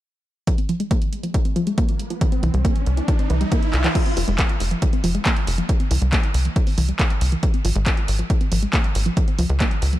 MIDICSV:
0, 0, Header, 1, 5, 480
1, 0, Start_track
1, 0, Key_signature, -4, "minor"
1, 0, Tempo, 434783
1, 523, Time_signature, 4, 2, 24, 8
1, 11033, End_track
2, 0, Start_track
2, 0, Title_t, "Synth pluck"
2, 0, Program_c, 0, 84
2, 523, Note_on_c, 0, 53, 80
2, 589, Note_off_c, 0, 53, 0
2, 643, Note_on_c, 0, 60, 73
2, 687, Note_off_c, 0, 60, 0
2, 762, Note_on_c, 0, 53, 96
2, 807, Note_off_c, 0, 53, 0
2, 882, Note_on_c, 0, 56, 75
2, 949, Note_off_c, 0, 56, 0
2, 1003, Note_on_c, 0, 58, 94
2, 1069, Note_off_c, 0, 58, 0
2, 1362, Note_on_c, 0, 53, 71
2, 1389, Note_off_c, 0, 53, 0
2, 1483, Note_on_c, 0, 53, 81
2, 1549, Note_off_c, 0, 53, 0
2, 1603, Note_on_c, 0, 60, 76
2, 1647, Note_off_c, 0, 60, 0
2, 1722, Note_on_c, 0, 53, 94
2, 1767, Note_off_c, 0, 53, 0
2, 1842, Note_on_c, 0, 56, 75
2, 1909, Note_off_c, 0, 56, 0
2, 1963, Note_on_c, 0, 58, 99
2, 2029, Note_off_c, 0, 58, 0
2, 2323, Note_on_c, 0, 53, 78
2, 2349, Note_off_c, 0, 53, 0
2, 2443, Note_on_c, 0, 52, 80
2, 2509, Note_off_c, 0, 52, 0
2, 2562, Note_on_c, 0, 60, 75
2, 2607, Note_off_c, 0, 60, 0
2, 2682, Note_on_c, 0, 52, 98
2, 2727, Note_off_c, 0, 52, 0
2, 2802, Note_on_c, 0, 55, 75
2, 2869, Note_off_c, 0, 55, 0
2, 2922, Note_on_c, 0, 58, 96
2, 2989, Note_off_c, 0, 58, 0
2, 3283, Note_on_c, 0, 52, 72
2, 3309, Note_off_c, 0, 52, 0
2, 3403, Note_on_c, 0, 52, 84
2, 3469, Note_off_c, 0, 52, 0
2, 3523, Note_on_c, 0, 60, 76
2, 3567, Note_off_c, 0, 60, 0
2, 3643, Note_on_c, 0, 52, 93
2, 3687, Note_off_c, 0, 52, 0
2, 3764, Note_on_c, 0, 55, 77
2, 3830, Note_off_c, 0, 55, 0
2, 3884, Note_on_c, 0, 58, 98
2, 3950, Note_off_c, 0, 58, 0
2, 4243, Note_on_c, 0, 52, 79
2, 4269, Note_off_c, 0, 52, 0
2, 4363, Note_on_c, 0, 53, 80
2, 4429, Note_off_c, 0, 53, 0
2, 4482, Note_on_c, 0, 60, 77
2, 4527, Note_off_c, 0, 60, 0
2, 4602, Note_on_c, 0, 53, 102
2, 4647, Note_off_c, 0, 53, 0
2, 4722, Note_on_c, 0, 56, 75
2, 4789, Note_off_c, 0, 56, 0
2, 4842, Note_on_c, 0, 58, 102
2, 4909, Note_off_c, 0, 58, 0
2, 5202, Note_on_c, 0, 53, 72
2, 5229, Note_off_c, 0, 53, 0
2, 5322, Note_on_c, 0, 53, 82
2, 5389, Note_off_c, 0, 53, 0
2, 5442, Note_on_c, 0, 60, 77
2, 5487, Note_off_c, 0, 60, 0
2, 5561, Note_on_c, 0, 53, 97
2, 5606, Note_off_c, 0, 53, 0
2, 5682, Note_on_c, 0, 56, 77
2, 5749, Note_off_c, 0, 56, 0
2, 5802, Note_on_c, 0, 58, 97
2, 5869, Note_off_c, 0, 58, 0
2, 6162, Note_on_c, 0, 53, 78
2, 6189, Note_off_c, 0, 53, 0
2, 6282, Note_on_c, 0, 52, 80
2, 6349, Note_off_c, 0, 52, 0
2, 6402, Note_on_c, 0, 60, 78
2, 6447, Note_off_c, 0, 60, 0
2, 6522, Note_on_c, 0, 52, 101
2, 6567, Note_off_c, 0, 52, 0
2, 6643, Note_on_c, 0, 55, 77
2, 6709, Note_off_c, 0, 55, 0
2, 6762, Note_on_c, 0, 58, 99
2, 6829, Note_off_c, 0, 58, 0
2, 7123, Note_on_c, 0, 52, 70
2, 7149, Note_off_c, 0, 52, 0
2, 7242, Note_on_c, 0, 52, 80
2, 7309, Note_off_c, 0, 52, 0
2, 7362, Note_on_c, 0, 60, 77
2, 7407, Note_off_c, 0, 60, 0
2, 7483, Note_on_c, 0, 52, 98
2, 7527, Note_off_c, 0, 52, 0
2, 7603, Note_on_c, 0, 55, 75
2, 7669, Note_off_c, 0, 55, 0
2, 7723, Note_on_c, 0, 58, 97
2, 7790, Note_off_c, 0, 58, 0
2, 8083, Note_on_c, 0, 52, 78
2, 8109, Note_off_c, 0, 52, 0
2, 8203, Note_on_c, 0, 53, 78
2, 8269, Note_off_c, 0, 53, 0
2, 8322, Note_on_c, 0, 60, 77
2, 8367, Note_off_c, 0, 60, 0
2, 8442, Note_on_c, 0, 53, 104
2, 8487, Note_off_c, 0, 53, 0
2, 8562, Note_on_c, 0, 56, 77
2, 8629, Note_off_c, 0, 56, 0
2, 8682, Note_on_c, 0, 58, 96
2, 8749, Note_off_c, 0, 58, 0
2, 9042, Note_on_c, 0, 53, 73
2, 9069, Note_off_c, 0, 53, 0
2, 9162, Note_on_c, 0, 53, 82
2, 9229, Note_off_c, 0, 53, 0
2, 9282, Note_on_c, 0, 60, 78
2, 9327, Note_off_c, 0, 60, 0
2, 9402, Note_on_c, 0, 53, 92
2, 9447, Note_off_c, 0, 53, 0
2, 9523, Note_on_c, 0, 56, 75
2, 9589, Note_off_c, 0, 56, 0
2, 9642, Note_on_c, 0, 58, 96
2, 9709, Note_off_c, 0, 58, 0
2, 10002, Note_on_c, 0, 53, 80
2, 10029, Note_off_c, 0, 53, 0
2, 10122, Note_on_c, 0, 53, 81
2, 10189, Note_off_c, 0, 53, 0
2, 10242, Note_on_c, 0, 60, 76
2, 10287, Note_off_c, 0, 60, 0
2, 10362, Note_on_c, 0, 53, 99
2, 10407, Note_off_c, 0, 53, 0
2, 10482, Note_on_c, 0, 56, 77
2, 10549, Note_off_c, 0, 56, 0
2, 10602, Note_on_c, 0, 58, 98
2, 10669, Note_off_c, 0, 58, 0
2, 10962, Note_on_c, 0, 53, 74
2, 10989, Note_off_c, 0, 53, 0
2, 11033, End_track
3, 0, Start_track
3, 0, Title_t, "Analog synth bass"
3, 0, Program_c, 1, 38
3, 2683, Note_on_c, 1, 36, 99
3, 2763, Note_off_c, 1, 36, 0
3, 2803, Note_on_c, 1, 36, 102
3, 2963, Note_off_c, 1, 36, 0
3, 3164, Note_on_c, 1, 36, 80
3, 3323, Note_off_c, 1, 36, 0
3, 3644, Note_on_c, 1, 36, 81
3, 3803, Note_off_c, 1, 36, 0
3, 4123, Note_on_c, 1, 36, 86
3, 4283, Note_off_c, 1, 36, 0
3, 4603, Note_on_c, 1, 29, 97
3, 4683, Note_off_c, 1, 29, 0
3, 4723, Note_on_c, 1, 29, 107
3, 4883, Note_off_c, 1, 29, 0
3, 5083, Note_on_c, 1, 29, 82
3, 5243, Note_off_c, 1, 29, 0
3, 5563, Note_on_c, 1, 29, 82
3, 5723, Note_off_c, 1, 29, 0
3, 6042, Note_on_c, 1, 29, 87
3, 6203, Note_off_c, 1, 29, 0
3, 6523, Note_on_c, 1, 36, 101
3, 6603, Note_off_c, 1, 36, 0
3, 6642, Note_on_c, 1, 36, 104
3, 6803, Note_off_c, 1, 36, 0
3, 7002, Note_on_c, 1, 36, 85
3, 7163, Note_off_c, 1, 36, 0
3, 7482, Note_on_c, 1, 36, 82
3, 7643, Note_off_c, 1, 36, 0
3, 7962, Note_on_c, 1, 36, 89
3, 8123, Note_off_c, 1, 36, 0
3, 8443, Note_on_c, 1, 32, 96
3, 8523, Note_off_c, 1, 32, 0
3, 8562, Note_on_c, 1, 32, 105
3, 8723, Note_off_c, 1, 32, 0
3, 8923, Note_on_c, 1, 32, 84
3, 9083, Note_off_c, 1, 32, 0
3, 9403, Note_on_c, 1, 32, 82
3, 9563, Note_off_c, 1, 32, 0
3, 9884, Note_on_c, 1, 32, 86
3, 10044, Note_off_c, 1, 32, 0
3, 10363, Note_on_c, 1, 37, 98
3, 10443, Note_off_c, 1, 37, 0
3, 10482, Note_on_c, 1, 37, 105
3, 10643, Note_off_c, 1, 37, 0
3, 10843, Note_on_c, 1, 37, 85
3, 11003, Note_off_c, 1, 37, 0
3, 11033, End_track
4, 0, Start_track
4, 0, Title_t, "Riser"
4, 0, Program_c, 2, 103
4, 522, Note_on_c, 2, 60, 71
4, 4363, Note_off_c, 2, 60, 0
4, 11033, End_track
5, 0, Start_track
5, 0, Title_t, "Drums"
5, 523, Note_on_c, 9, 36, 112
5, 523, Note_on_c, 9, 42, 91
5, 633, Note_off_c, 9, 36, 0
5, 633, Note_off_c, 9, 42, 0
5, 642, Note_on_c, 9, 42, 53
5, 753, Note_off_c, 9, 42, 0
5, 762, Note_on_c, 9, 42, 65
5, 873, Note_off_c, 9, 42, 0
5, 883, Note_on_c, 9, 42, 50
5, 993, Note_off_c, 9, 42, 0
5, 1003, Note_on_c, 9, 36, 112
5, 1003, Note_on_c, 9, 42, 93
5, 1113, Note_off_c, 9, 36, 0
5, 1113, Note_off_c, 9, 42, 0
5, 1122, Note_on_c, 9, 42, 52
5, 1233, Note_off_c, 9, 42, 0
5, 1243, Note_on_c, 9, 42, 66
5, 1354, Note_off_c, 9, 42, 0
5, 1363, Note_on_c, 9, 42, 50
5, 1473, Note_off_c, 9, 42, 0
5, 1483, Note_on_c, 9, 36, 116
5, 1483, Note_on_c, 9, 42, 92
5, 1593, Note_off_c, 9, 42, 0
5, 1594, Note_off_c, 9, 36, 0
5, 1602, Note_on_c, 9, 42, 54
5, 1713, Note_off_c, 9, 42, 0
5, 1722, Note_on_c, 9, 42, 66
5, 1832, Note_off_c, 9, 42, 0
5, 1842, Note_on_c, 9, 42, 51
5, 1953, Note_off_c, 9, 42, 0
5, 1962, Note_on_c, 9, 42, 92
5, 1963, Note_on_c, 9, 36, 119
5, 2073, Note_off_c, 9, 36, 0
5, 2073, Note_off_c, 9, 42, 0
5, 2082, Note_on_c, 9, 42, 54
5, 2193, Note_off_c, 9, 42, 0
5, 2202, Note_on_c, 9, 42, 68
5, 2313, Note_off_c, 9, 42, 0
5, 2322, Note_on_c, 9, 42, 52
5, 2433, Note_off_c, 9, 42, 0
5, 2442, Note_on_c, 9, 42, 86
5, 2443, Note_on_c, 9, 36, 116
5, 2553, Note_off_c, 9, 36, 0
5, 2553, Note_off_c, 9, 42, 0
5, 2563, Note_on_c, 9, 42, 50
5, 2673, Note_off_c, 9, 42, 0
5, 2683, Note_on_c, 9, 42, 66
5, 2793, Note_off_c, 9, 42, 0
5, 2803, Note_on_c, 9, 42, 48
5, 2913, Note_off_c, 9, 42, 0
5, 2923, Note_on_c, 9, 36, 121
5, 2923, Note_on_c, 9, 42, 91
5, 3033, Note_off_c, 9, 36, 0
5, 3033, Note_off_c, 9, 42, 0
5, 3043, Note_on_c, 9, 42, 51
5, 3153, Note_off_c, 9, 42, 0
5, 3163, Note_on_c, 9, 42, 63
5, 3273, Note_off_c, 9, 42, 0
5, 3283, Note_on_c, 9, 42, 50
5, 3393, Note_off_c, 9, 42, 0
5, 3403, Note_on_c, 9, 36, 122
5, 3403, Note_on_c, 9, 42, 91
5, 3513, Note_off_c, 9, 36, 0
5, 3513, Note_off_c, 9, 42, 0
5, 3523, Note_on_c, 9, 42, 51
5, 3633, Note_off_c, 9, 42, 0
5, 3643, Note_on_c, 9, 42, 65
5, 3753, Note_off_c, 9, 42, 0
5, 3763, Note_on_c, 9, 42, 52
5, 3873, Note_off_c, 9, 42, 0
5, 3883, Note_on_c, 9, 36, 124
5, 3883, Note_on_c, 9, 42, 87
5, 3993, Note_off_c, 9, 36, 0
5, 3993, Note_off_c, 9, 42, 0
5, 4003, Note_on_c, 9, 42, 52
5, 4113, Note_off_c, 9, 42, 0
5, 4123, Note_on_c, 9, 39, 84
5, 4123, Note_on_c, 9, 42, 68
5, 4233, Note_off_c, 9, 39, 0
5, 4233, Note_off_c, 9, 42, 0
5, 4243, Note_on_c, 9, 39, 92
5, 4243, Note_on_c, 9, 42, 51
5, 4353, Note_off_c, 9, 39, 0
5, 4353, Note_off_c, 9, 42, 0
5, 4363, Note_on_c, 9, 36, 118
5, 4363, Note_on_c, 9, 42, 94
5, 4363, Note_on_c, 9, 49, 96
5, 4473, Note_off_c, 9, 42, 0
5, 4473, Note_off_c, 9, 49, 0
5, 4474, Note_off_c, 9, 36, 0
5, 4483, Note_on_c, 9, 42, 53
5, 4593, Note_off_c, 9, 42, 0
5, 4602, Note_on_c, 9, 46, 108
5, 4713, Note_off_c, 9, 46, 0
5, 4722, Note_on_c, 9, 42, 52
5, 4833, Note_off_c, 9, 42, 0
5, 4842, Note_on_c, 9, 39, 122
5, 4842, Note_on_c, 9, 42, 100
5, 4843, Note_on_c, 9, 36, 117
5, 4952, Note_off_c, 9, 39, 0
5, 4952, Note_off_c, 9, 42, 0
5, 4954, Note_off_c, 9, 36, 0
5, 4961, Note_on_c, 9, 42, 54
5, 5072, Note_off_c, 9, 42, 0
5, 5082, Note_on_c, 9, 46, 101
5, 5192, Note_off_c, 9, 46, 0
5, 5202, Note_on_c, 9, 42, 53
5, 5312, Note_off_c, 9, 42, 0
5, 5322, Note_on_c, 9, 42, 96
5, 5323, Note_on_c, 9, 36, 117
5, 5432, Note_off_c, 9, 42, 0
5, 5434, Note_off_c, 9, 36, 0
5, 5442, Note_on_c, 9, 42, 55
5, 5553, Note_off_c, 9, 42, 0
5, 5562, Note_on_c, 9, 46, 103
5, 5672, Note_off_c, 9, 46, 0
5, 5683, Note_on_c, 9, 42, 54
5, 5793, Note_off_c, 9, 42, 0
5, 5802, Note_on_c, 9, 39, 124
5, 5802, Note_on_c, 9, 42, 92
5, 5803, Note_on_c, 9, 36, 120
5, 5913, Note_off_c, 9, 39, 0
5, 5913, Note_off_c, 9, 42, 0
5, 5914, Note_off_c, 9, 36, 0
5, 5923, Note_on_c, 9, 42, 55
5, 6033, Note_off_c, 9, 42, 0
5, 6043, Note_on_c, 9, 46, 109
5, 6153, Note_off_c, 9, 46, 0
5, 6163, Note_on_c, 9, 42, 53
5, 6273, Note_off_c, 9, 42, 0
5, 6283, Note_on_c, 9, 36, 117
5, 6283, Note_on_c, 9, 42, 96
5, 6394, Note_off_c, 9, 36, 0
5, 6394, Note_off_c, 9, 42, 0
5, 6403, Note_on_c, 9, 42, 52
5, 6513, Note_off_c, 9, 42, 0
5, 6523, Note_on_c, 9, 46, 107
5, 6633, Note_off_c, 9, 46, 0
5, 6643, Note_on_c, 9, 42, 50
5, 6753, Note_off_c, 9, 42, 0
5, 6763, Note_on_c, 9, 36, 126
5, 6763, Note_on_c, 9, 39, 126
5, 6763, Note_on_c, 9, 42, 92
5, 6873, Note_off_c, 9, 36, 0
5, 6874, Note_off_c, 9, 39, 0
5, 6874, Note_off_c, 9, 42, 0
5, 6883, Note_on_c, 9, 42, 52
5, 6993, Note_off_c, 9, 42, 0
5, 7003, Note_on_c, 9, 46, 106
5, 7113, Note_off_c, 9, 46, 0
5, 7123, Note_on_c, 9, 42, 49
5, 7233, Note_off_c, 9, 42, 0
5, 7243, Note_on_c, 9, 36, 125
5, 7243, Note_on_c, 9, 42, 90
5, 7353, Note_off_c, 9, 36, 0
5, 7353, Note_off_c, 9, 42, 0
5, 7362, Note_on_c, 9, 46, 61
5, 7473, Note_off_c, 9, 46, 0
5, 7482, Note_on_c, 9, 46, 109
5, 7592, Note_off_c, 9, 46, 0
5, 7602, Note_on_c, 9, 42, 53
5, 7713, Note_off_c, 9, 42, 0
5, 7722, Note_on_c, 9, 39, 119
5, 7722, Note_on_c, 9, 42, 92
5, 7723, Note_on_c, 9, 36, 127
5, 7833, Note_off_c, 9, 36, 0
5, 7833, Note_off_c, 9, 39, 0
5, 7833, Note_off_c, 9, 42, 0
5, 7842, Note_on_c, 9, 42, 52
5, 7953, Note_off_c, 9, 42, 0
5, 7962, Note_on_c, 9, 46, 111
5, 8073, Note_off_c, 9, 46, 0
5, 8082, Note_on_c, 9, 42, 51
5, 8193, Note_off_c, 9, 42, 0
5, 8202, Note_on_c, 9, 42, 87
5, 8203, Note_on_c, 9, 36, 117
5, 8312, Note_off_c, 9, 42, 0
5, 8313, Note_off_c, 9, 36, 0
5, 8322, Note_on_c, 9, 42, 50
5, 8433, Note_off_c, 9, 42, 0
5, 8442, Note_on_c, 9, 46, 109
5, 8552, Note_off_c, 9, 46, 0
5, 8562, Note_on_c, 9, 42, 50
5, 8673, Note_off_c, 9, 42, 0
5, 8682, Note_on_c, 9, 39, 124
5, 8682, Note_on_c, 9, 42, 88
5, 8683, Note_on_c, 9, 36, 127
5, 8792, Note_off_c, 9, 39, 0
5, 8792, Note_off_c, 9, 42, 0
5, 8793, Note_off_c, 9, 36, 0
5, 8803, Note_on_c, 9, 42, 50
5, 8913, Note_off_c, 9, 42, 0
5, 8923, Note_on_c, 9, 46, 112
5, 9033, Note_off_c, 9, 46, 0
5, 9043, Note_on_c, 9, 42, 49
5, 9153, Note_off_c, 9, 42, 0
5, 9163, Note_on_c, 9, 36, 127
5, 9163, Note_on_c, 9, 42, 90
5, 9273, Note_off_c, 9, 36, 0
5, 9273, Note_off_c, 9, 42, 0
5, 9282, Note_on_c, 9, 42, 51
5, 9393, Note_off_c, 9, 42, 0
5, 9402, Note_on_c, 9, 46, 111
5, 9512, Note_off_c, 9, 46, 0
5, 9522, Note_on_c, 9, 42, 51
5, 9633, Note_off_c, 9, 42, 0
5, 9642, Note_on_c, 9, 39, 120
5, 9642, Note_on_c, 9, 42, 87
5, 9643, Note_on_c, 9, 36, 127
5, 9753, Note_off_c, 9, 36, 0
5, 9753, Note_off_c, 9, 39, 0
5, 9753, Note_off_c, 9, 42, 0
5, 9763, Note_on_c, 9, 42, 50
5, 9873, Note_off_c, 9, 42, 0
5, 9882, Note_on_c, 9, 46, 112
5, 9992, Note_off_c, 9, 46, 0
5, 10002, Note_on_c, 9, 42, 48
5, 10113, Note_off_c, 9, 42, 0
5, 10122, Note_on_c, 9, 42, 88
5, 10123, Note_on_c, 9, 36, 122
5, 10233, Note_off_c, 9, 36, 0
5, 10233, Note_off_c, 9, 42, 0
5, 10242, Note_on_c, 9, 42, 48
5, 10353, Note_off_c, 9, 42, 0
5, 10362, Note_on_c, 9, 46, 109
5, 10472, Note_off_c, 9, 46, 0
5, 10482, Note_on_c, 9, 42, 48
5, 10593, Note_off_c, 9, 42, 0
5, 10602, Note_on_c, 9, 39, 117
5, 10602, Note_on_c, 9, 42, 86
5, 10603, Note_on_c, 9, 36, 121
5, 10713, Note_off_c, 9, 36, 0
5, 10713, Note_off_c, 9, 39, 0
5, 10713, Note_off_c, 9, 42, 0
5, 10723, Note_on_c, 9, 42, 50
5, 10833, Note_off_c, 9, 42, 0
5, 10842, Note_on_c, 9, 46, 107
5, 10952, Note_off_c, 9, 46, 0
5, 10962, Note_on_c, 9, 42, 47
5, 11033, Note_off_c, 9, 42, 0
5, 11033, End_track
0, 0, End_of_file